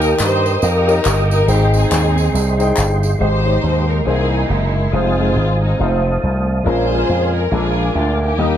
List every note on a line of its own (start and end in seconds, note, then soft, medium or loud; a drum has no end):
0.00 0.13 D#2 loud
0.00 0.40 D#3 medium
0.00 0.19 D#4 medium
0.00 0.42 D#4 medium
0.00 0.19 G4 medium
0.00 0.42 G4 medium
0.00 0.17 A#4 loud
0.00 0.42 A#4 medium
0.00 1.46 A#4 medium
0.00 3.17 D#5 medium
0.00 0.45 G5 medium
0.00 3.17 G5 medium
0.00 1.46 D#6 medium
0.00 tambourine medium
0.19 0.56 G2 medium
0.19 0.62 D#4 medium
0.19 0.62 G4 medium
0.19 0.63 C5 loud
0.19 clap loud
0.19 tambourine loud
0.46 tambourine medium
0.62 0.99 F2 medium
0.62 1.45 D#4 medium
0.62 1.44 G4 medium
0.62 1.31 A#4 loud
0.62 tambourine medium
0.87 1.33 D#4 medium
0.87 1.34 G4 medium
0.87 1.34 A#4 medium
0.87 0.92 C#5 medium
0.87 tambourine medium
0.93 1.37 D#5 medium
1.05 1.42 G1 medium
1.05 clap loud
1.05 tambourine medium
1.31 1.48 A#4 medium
1.31 tambourine medium
1.47 1.84 G#1 loud
1.47 2.13 G#2 medium
1.47 1.74 C4 medium
1.47 2.14 D#4 medium
1.47 1.74 D#4 medium
1.47 3.18 G#4 medium
1.47 2.14 G#4 medium
1.47 2.15 C5 medium
1.47 2.15 G5 medium
1.47 3.18 C6 medium
1.47 tambourine medium
1.51 1.75 G4 medium
1.74 2.56 C4 medium
1.74 2.56 D#4 medium
1.74 2.57 G#4 medium
1.74 tambourine medium
1.91 2.28 D#2 medium
1.91 clap loud
1.91 tambourine medium
2.18 tambourine medium
2.34 2.71 C2 loud
2.34 tambourine medium
2.58 3.05 D#4 medium
2.58 3.06 G#4 medium
2.58 3.06 C5 medium
2.58 3.07 G5 medium
2.58 tambourine medium
2.77 3.14 G1 medium
2.77 clap medium
2.77 tambourine loud
3.03 tambourine medium
3.19 3.57 G#1 medium
3.19 3.85 G#2 medium
3.19 3.38 G#3 medium
3.19 4.06 G#3 medium
3.19 3.39 D#4 medium
3.19 4.03 D#4 medium
3.19 3.39 G4 medium
3.19 4.03 G4 medium
3.19 3.85 C5 loud
3.19 3.40 C5 medium
3.19 4.06 D#5 medium
3.19 4.06 G5 medium
3.19 4.06 C6 medium
3.45 3.92 G#3 medium
3.45 3.92 D#4 medium
3.45 3.93 G4 medium
3.45 3.50 C#5 medium
3.52 3.96 D#5 medium
3.63 4.00 D#2 medium
3.89 4.06 A#4 medium
4.05 4.43 C2 loud
4.05 4.71 C3 medium
4.05 4.73 E3 medium
4.05 4.73 A#3 medium
4.05 4.89 D#4 medium
4.05 4.48 E4 medium
4.05 4.73 G#4 medium
4.05 4.47 G#4 medium
4.05 4.93 A#4 medium
4.05 4.73 C5 medium
4.05 4.92 D#5 medium
4.05 5.78 G#5 medium
4.05 4.93 C6 medium
4.49 4.87 F#1 medium
4.49 4.90 G#3 medium
4.49 4.90 A#3 medium
4.49 4.93 E4 medium
4.92 5.30 F1 medium
4.92 5.75 G#3 medium
4.92 5.12 G#3 medium
4.92 5.60 C4 medium
4.92 5.12 D#4 medium
4.92 5.62 F4 medium
4.92 5.12 F4 medium
4.92 6.64 C5 medium
4.92 5.13 C5 medium
4.92 8.36 F5 medium
4.92 5.78 D#6 medium
5.19 5.65 G#3 medium
5.19 5.66 D#4 medium
5.19 5.66 F4 medium
5.19 5.66 G#4 medium
5.36 5.73 G#1 medium
5.61 6.44 A3 soft
5.61 6.44 C4 medium
5.61 6.02 D#4 medium
5.79 6.17 F1 loud
5.79 5.85 G#3 medium
5.79 6.46 D#4 medium
5.79 6.47 F4 medium
5.79 6.47 C5 medium
5.79 6.66 A5 soft
5.79 6.66 D#6 medium
5.84 6.49 A3 medium
6.23 6.60 C2 medium
6.64 7.03 A#1 medium
6.64 7.31 A#2 medium
6.64 6.84 G#3 medium
6.64 6.84 C#4 medium
6.64 6.85 F4 medium
6.64 7.49 F4 medium
6.64 7.49 G#4 medium
6.64 6.85 A#4 medium
6.64 7.52 A#4 medium
6.64 7.31 C5 loud
6.64 8.38 G#5 medium
6.91 7.38 G#3 medium
6.91 7.38 C#4 medium
6.91 7.38 F4 medium
6.91 6.97 G#4 medium
6.98 7.41 A#4 medium
7.09 7.46 F2 medium
7.35 7.53 A#4 medium
7.51 7.89 A#1 loud
7.51 8.18 A#2 medium
7.51 8.19 G#3 medium
7.51 8.19 D4 medium
7.51 8.35 D4 medium
7.51 8.19 F4 medium
7.51 7.96 F4 medium
7.51 7.96 G#4 medium
7.51 7.59 A4 medium
7.51 8.57 A#4 medium
7.51 8.39 D6 medium
7.59 8.23 A#4 medium
7.95 8.32 D2 medium
7.95 8.22 F4 medium
8.23 8.57 A#3 medium
8.23 8.57 D#4 medium
8.23 8.57 G4 medium
8.38 8.57 D#2 loud
8.38 8.57 D#3 medium
8.38 8.57 G3 medium
8.38 8.57 A#3 medium
8.38 8.57 D#4 medium
8.38 8.57 A#4 medium
8.38 8.57 D#5 medium
8.38 8.57 G5 medium
8.38 8.57 D#6 medium